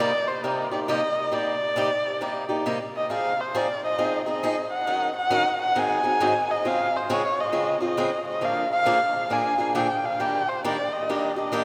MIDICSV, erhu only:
0, 0, Header, 1, 2, 480
1, 0, Start_track
1, 0, Key_signature, -3, "minor"
1, 0, Tempo, 443459
1, 1435, Time_signature, 4, 2, 24, 8
1, 12599, End_track
2, 0, Start_track
2, 0, Title_t, "Erhu"
2, 0, Program_c, 0, 110
2, 0, Note_on_c, 0, 74, 102
2, 298, Note_on_c, 0, 72, 83
2, 314, Note_off_c, 0, 74, 0
2, 476, Note_on_c, 0, 70, 84
2, 492, Note_off_c, 0, 72, 0
2, 773, Note_off_c, 0, 70, 0
2, 780, Note_on_c, 0, 74, 77
2, 859, Note_off_c, 0, 74, 0
2, 939, Note_on_c, 0, 75, 96
2, 1444, Note_on_c, 0, 74, 99
2, 1461, Note_off_c, 0, 75, 0
2, 2883, Note_off_c, 0, 74, 0
2, 3210, Note_on_c, 0, 75, 90
2, 3362, Note_off_c, 0, 75, 0
2, 3380, Note_on_c, 0, 77, 92
2, 3685, Note_on_c, 0, 72, 84
2, 3701, Note_off_c, 0, 77, 0
2, 3862, Note_on_c, 0, 74, 88
2, 3878, Note_off_c, 0, 72, 0
2, 4152, Note_off_c, 0, 74, 0
2, 4159, Note_on_c, 0, 75, 86
2, 4600, Note_off_c, 0, 75, 0
2, 4642, Note_on_c, 0, 75, 86
2, 5082, Note_off_c, 0, 75, 0
2, 5111, Note_on_c, 0, 78, 96
2, 5556, Note_off_c, 0, 78, 0
2, 5588, Note_on_c, 0, 78, 106
2, 6035, Note_off_c, 0, 78, 0
2, 6076, Note_on_c, 0, 78, 93
2, 6264, Note_on_c, 0, 80, 105
2, 6280, Note_off_c, 0, 78, 0
2, 7046, Note_on_c, 0, 75, 93
2, 7062, Note_off_c, 0, 80, 0
2, 7225, Note_on_c, 0, 77, 100
2, 7241, Note_off_c, 0, 75, 0
2, 7535, Note_on_c, 0, 72, 91
2, 7551, Note_off_c, 0, 77, 0
2, 7711, Note_on_c, 0, 73, 107
2, 7727, Note_off_c, 0, 72, 0
2, 8009, Note_on_c, 0, 75, 94
2, 8026, Note_off_c, 0, 73, 0
2, 8472, Note_off_c, 0, 75, 0
2, 8479, Note_on_c, 0, 75, 86
2, 8920, Note_off_c, 0, 75, 0
2, 8958, Note_on_c, 0, 75, 88
2, 9140, Note_on_c, 0, 77, 98
2, 9156, Note_off_c, 0, 75, 0
2, 9432, Note_off_c, 0, 77, 0
2, 9438, Note_on_c, 0, 77, 116
2, 10094, Note_on_c, 0, 80, 96
2, 10110, Note_off_c, 0, 77, 0
2, 10567, Note_off_c, 0, 80, 0
2, 10572, Note_on_c, 0, 79, 81
2, 10880, Note_on_c, 0, 77, 87
2, 10896, Note_off_c, 0, 79, 0
2, 11040, Note_on_c, 0, 79, 98
2, 11056, Note_off_c, 0, 77, 0
2, 11349, Note_on_c, 0, 72, 89
2, 11365, Note_off_c, 0, 79, 0
2, 11519, Note_off_c, 0, 72, 0
2, 11526, Note_on_c, 0, 74, 88
2, 11825, Note_on_c, 0, 75, 82
2, 11841, Note_off_c, 0, 74, 0
2, 12296, Note_off_c, 0, 75, 0
2, 12302, Note_on_c, 0, 75, 85
2, 12599, Note_off_c, 0, 75, 0
2, 12599, End_track
0, 0, End_of_file